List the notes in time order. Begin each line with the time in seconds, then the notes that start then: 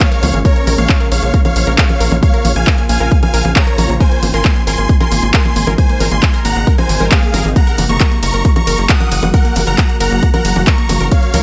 0.01 A#3 C#5 F5, kick, clap, closed hi-hat
0.12 A#4, closed hi-hat
0.23 C#2 A#3, open hi-hat, high conga
0.34 G#1 A#3, closed hi-hat
0.45 A#3 A#4 C#5, kick, closed hi-hat, shaker
0.56 A#3, closed hi-hat
0.67 A#1 A#4, open hi-hat, high conga, shaker
0.78 A#1 A#3 C#5 F5, closed hi-hat, shaker
0.89 A#3, kick, clap, closed hi-hat, shaker
1.00 A#4, closed hi-hat
1.11 A#1 A#3 C#5 F5, open hi-hat, shaker
1.23 A#1 A#3, closed hi-hat, shaker
1.34 A#4, kick, closed hi-hat, shaker
1.45 A#3 C#5 F5, closed hi-hat, high conga
1.56 A#1 A#3, open hi-hat, shaker
1.67 A#1 A#4, closed hi-hat, shaker
1.78 A#3 C#5 F5, kick, clap, closed hi-hat, shaker
1.89 A#3, closed hi-hat, high conga
2.00 A#1 A#4, open hi-hat, shaker
2.11 A#1 A#3, high conga, shaker
2.23 A#3 C#5 F5, kick, closed hi-hat, shaker
2.34 A#4, closed hi-hat
2.45 A#1 A#3, open hi-hat, high conga, shaker
2.56 A#1 A#3 F5 G#5, closed hi-hat, shaker
2.67 A#4, kick, clap, closed hi-hat, shaker
2.78 A#3, closed hi-hat
2.89 A#1 A#3 F5 G#5, open hi-hat, shaker
3.00 A#1 A#4, closed hi-hat, shaker
3.11 A#3, kick, closed hi-hat, shaker
3.23 A#3 F5 G#5, closed hi-hat, high conga
3.34 A#1 A#4, open hi-hat, shaker
3.45 A#1 A#3, closed hi-hat, high conga, shaker
3.56 A#3 C#5 A#5, kick, clap, closed hi-hat, shaker
3.67 A#4, closed hi-hat
3.78 A#1 A#3, open hi-hat, high conga, shaker
3.89 A#1 A#3, closed hi-hat, shaker
4.00 A#4 C5 G#5, kick, closed hi-hat, shaker
4.12 A#3, closed hi-hat
4.23 G#1 A#3, open hi-hat, high conga, shaker
4.34 G#1 A#4 G#5 C6, closed hi-hat, shaker
4.45 A#3, kick, clap, closed hi-hat, shaker
4.56 A#3, closed hi-hat
4.67 G#1 A#4 G#5 C6, open hi-hat, shaker
4.78 G#1 A#3, closed hi-hat, shaker
4.89 A#3, kick, closed hi-hat, shaker
5.00 A#4 G#5 C6, closed hi-hat, high conga
5.11 G#1 A#3, open hi-hat, shaker
5.23 G#1 A#3, closed hi-hat, shaker
5.33 A#4 G#5 C6, kick, clap, closed hi-hat, shaker
5.45 A#3, closed hi-hat, high conga
5.56 G#1 A#3, open hi-hat, shaker
5.67 G#1 A#4, closed hi-hat, high conga, shaker
5.78 A#3 C5 G#5, kick, closed hi-hat, shaker
5.89 A#3, closed hi-hat
6.00 G#1 A#4, open hi-hat, high conga, shaker
6.11 G#1 A#3 G#5 C6, closed hi-hat, shaker
6.22 A#3, kick, clap, closed hi-hat, shaker
6.34 A#4, closed hi-hat
6.45 G#1 A#3 F#5 A#5, open hi-hat, shaker
6.56 G#1 A#3, closed hi-hat, shaker
6.67 A#4, kick, closed hi-hat, shaker
6.78 A#3 C5 G#5, closed hi-hat, high conga
6.89 G#1 A#3, open hi-hat, shaker
7.00 G#1 A#4, closed hi-hat, high conga, shaker
7.11 A#3 G#4 F5, kick, clap, closed hi-hat, shaker
7.23 A#3, closed hi-hat
7.34 G#1 A#4, open hi-hat, high conga, shaker
7.45 G#1 A#3, closed hi-hat, shaker
7.56 A#3 F#5 A#5, kick, closed hi-hat, ride, shaker
7.67 A#4, closed hi-hat
7.78 F#1 A#3, open hi-hat, ride, high conga, shaker
7.89 F#1 A#3 A#5 C#6, closed hi-hat, shaker
8.00 A#4, kick, clap, closed hi-hat, ride, shaker
8.12 A#3, closed hi-hat
8.23 F#1 A#3 A#5 C#6, open hi-hat, ride, shaker
8.34 F#1 A#4, closed hi-hat, shaker
8.45 A#3, kick, closed hi-hat, ride, shaker
8.56 A#3 A#5 C#6, closed hi-hat, high conga
8.67 F#1 A#4, open hi-hat, ride, shaker
8.78 F#1 A#3, closed hi-hat, shaker
8.89 A#3 F#5 D#6, kick, clap, closed hi-hat, ride, shaker
9.00 A#4, closed hi-hat, high conga
9.11 F#1 A#3, open hi-hat, ride, shaker
9.23 F#1 A#3, closed hi-hat, high conga, shaker
9.34 A#4 F#5, kick, closed hi-hat, ride, shaker
9.45 A#3, closed hi-hat
9.55 F#1 A#3, open hi-hat, ride, high conga, shaker
9.67 F#1 A#4 F#5 A#5, closed hi-hat, shaker
9.78 A#3, kick, clap, closed hi-hat, ride, shaker
9.89 A#3, closed hi-hat
10.00 F#1 A#4 F#5 A#5, open hi-hat, ride, shaker
10.11 F#1 A#3, closed hi-hat, shaker
10.23 A#3, kick, closed hi-hat, ride, shaker
10.34 A#4 F#5 A#5, closed hi-hat, high conga
10.45 F#1 A#3, open hi-hat, ride, shaker
10.56 F#1 A#3, closed hi-hat, high conga, shaker
10.67 A#4 A#5 C#6, kick, clap, closed hi-hat, ride, shaker
10.78 A#3, closed hi-hat
10.89 F#1 A#3, open hi-hat, ride, high conga, shaker
11.00 F#1 A#4, closed hi-hat, shaker
11.11 A#3 C#5 F5, kick, closed hi-hat, ride, shaker
11.23 A#3, closed hi-hat
11.34 C#2 A#4, open hi-hat, ride, high conga, shaker